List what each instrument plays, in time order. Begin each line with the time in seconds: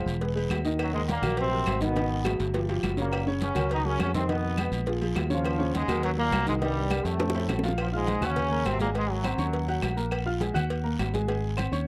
Already playing: trombone section F3 F4, grand piano G#3 G#4 C5
0.06 fingered electric bass E1, high conga, low agogo, short guiro
0.21 grand piano G#3 G#4 B4, cowbell, high conga, long guiro
0.35 grand piano G#3 G#4 B4, high conga, low agogo
0.49 fingered electric bass D#2, cowbell, high conga, low timbale, low agogo, short guiro, claves
0.65 grand piano D#3 D#4 D#5, high conga, short guiro
0.79 trombone section F#2 F#3, cowbell, high conga, low agogo, long guiro, claves
0.93 trombone section G#2 G#3, grand piano D#3 D#4 D#5, high conga
1.08 trombone section A#2 A#3, cowbell, high conga, low timbale, low agogo, short guiro
1.22 fingered electric bass A#1, grand piano F#3 F#4 A#4, cowbell, low conga, low agogo, short guiro, claves
1.37 trombone section C3 C4, cowbell, high conga, low agogo, long guiro
1.51 grand piano F#3 F#4 A#4, high conga
1.66 fingered electric bass G#1, cowbell, high conga, low timbale, low agogo, short guiro, claves
1.81 trombone section B2 B3, grand piano D#3 D#4 D#5, cowbell, high conga, short guiro
1.96 grand piano D#3 D#4 D#5, cowbell, high conga, high timbale, low agogo, long guiro
2.12 high conga
2.24 grand piano F#3 F#4 G#4, cowbell, high conga, low timbale, low agogo, short guiro, claves
2.40 fingered electric bass G1, high conga, low timbale, low agogo, short guiro
2.54 grand piano F3 F4 G4, cowbell, high conga, low timbale, long guiro
2.69 grand piano F3 F4 G4, high conga, low timbale, low agogo
2.83 fingered electric bass F#1, cowbell, high conga, low timbale, low agogo, short guiro, claves
2.97 trombone section A#2 A#3, grand piano C#3 C#4 C#5, high conga, low timbale, short guiro
3.12 cowbell, high conga, low agogo, long guiro, claves
3.27 grand piano C#3 C#4 C#5, high conga
3.40 trombone section C#3 C#4, cowbell, high conga, low timbale, low agogo, short guiro
3.55 fingered electric bass C#2, grand piano F#3 F#4 A#4, cowbell, low conga, low agogo, short guiro, claves
3.69 trombone section D#3 D#4, cowbell, high conga, low agogo, long guiro
3.85 trombone section C#3 C#4, grand piano F#3 F#4 A#4, high conga
3.99 fingered electric bass F2, trombone section C#3 C#4, cowbell, high conga, low timbale, low agogo, short guiro, claves
4.14 trombone section C3 C4, grand piano D#3 D#4 D#5, cowbell, high conga, short guiro
4.29 trombone section B2 B3, grand piano D#3 D#4 D#5, cowbell, high conga, low agogo, long guiro
4.44 high conga
4.58 grand piano G#3 G#4 B4, cowbell, high conga, low timbale, low agogo, short guiro, claves
4.71 fingered electric bass A#1, high conga, low agogo, short guiro
4.86 grand piano F3 F4 G#4, cowbell, high conga, long guiro
5.01 grand piano F3 F4 G#4, high conga, low agogo
5.16 fingered electric bass D#2, cowbell, high conga, low timbale, low agogo, short guiro, claves
5.30 grand piano C#3 C#4 C#5, trombone section F3 F4, high conga, short guiro
5.44 cowbell, high conga, low agogo, long guiro, claves
5.59 grand piano C#3 C#4 C#5, high conga
5.74 trombone section G#2 G#3, cowbell, high conga, low timbale, low agogo, short guiro
5.88 fingered electric bass D#2, grand piano F#3 F#4 A#4, cowbell, low conga, low agogo, short guiro, claves
6.03 trombone section F#2 F#3, cowbell, high conga, low agogo, long guiro
6.17 trombone section A#2 A#3, grand piano F#3 F#4 A#4, high conga
6.31 fingered electric bass C2, cowbell, high conga, low timbale, low agogo, short guiro, claves
6.46 trombone section G#2 G#3, grand piano D#3 D#4 D#5, cowbell, high conga, short guiro
6.61 trombone section G2 G3, grand piano D#3 D#4 D#5, cowbell, low agogo, long guiro
6.77 high conga
6.90 grand piano G3 G4 A#4, cowbell, high conga, low timbale, low agogo, short guiro, claves
7.05 fingered electric bass F2, trombone section A2 A3, high conga, low agogo, short guiro
7.20 grand piano A3 A4 C5, cowbell, high bongo, high conga, high timbale, long guiro
7.30 high bongo
7.34 grand piano A3 A4 C5, high conga, high timbale, low agogo
7.39 high bongo
7.48 fingered electric bass A#1, cowbell, low bongo, high conga, low timbale, low agogo, short guiro, claves
7.59 low bongo
7.63 grand piano F3 F4 F5, low timbale, short guiro
7.68 low bongo
7.78 trombone section F3 F4, cowbell, high conga, low agogo, long guiro, claves
7.92 trombone section G#2 G#3, grand piano F4 F5 F6, high conga
8.07 grand piano G#3 G#4 G#5, cowbell, high conga, low timbale, low agogo, short guiro
8.21 fingered electric bass D#2, trombone section C#3 C#4, grand piano F#4 F#5 F#6, cowbell, low conga, low agogo, short guiro, claves
8.36 cowbell, high conga, low conga, low agogo, long guiro
8.51 grand piano A#3 A#4 A#5, high conga
8.65 fingered electric bass G#1, trombone section C3 C4, cowbell, high conga, low timbale, low agogo, short guiro, claves
8.79 trombone section A#2 A#3, grand piano G#3 G#4 G#5, cowbell, high conga, short guiro
8.95 trombone section G#2 G#3, grand piano G#3 G#4 G#5, cowbell, high conga, low agogo, long guiro
9.10 trombone section F#2 F#3, high conga
9.24 grand piano C4 C5 C6, cowbell, high conga, low timbale, low agogo, short guiro, claves
9.38 fingered electric bass D#2, grand piano C#4 C#5 C#6, high conga, low agogo, short guiro
9.53 cowbell, high conga, long guiro
9.68 grand piano F#4 F#5 F#6, high conga, low agogo
9.82 fingered electric bass A#1, cowbell, high conga, low timbale, low agogo, short guiro, claves
9.96 grand piano A#3 A#4 A#5, high conga, short guiro
10.11 cowbell, high conga, low agogo, long guiro, claves
10.26 grand piano F4 F5 F6, high conga
10.40 grand piano G#3 G#4 G#5, cowbell, high conga, low timbale, low agogo, short guiro
10.54 fingered electric bass D#2, grand piano F#4 F#5 F#6, cowbell, low conga, low agogo, short guiro, claves
10.70 cowbell, high conga, low agogo, long guiro
10.83 grand piano A#3 A#4 A#5, high conga
10.99 fingered electric bass G#1, cowbell, high conga, low timbale, low agogo, short guiro, claves
11.13 grand piano G#3 G#4 G#5, cowbell, high conga, short guiro
11.28 grand piano G#3 G#4 G#5, cowbell, high conga, low agogo, long guiro
11.44 high conga
11.57 grand piano C4 C5 C6, cowbell, high conga, low timbale, low agogo, short guiro, claves
11.72 fingered electric bass D#2, grand piano C#4 C#5 C#6, high conga, low agogo, short guiro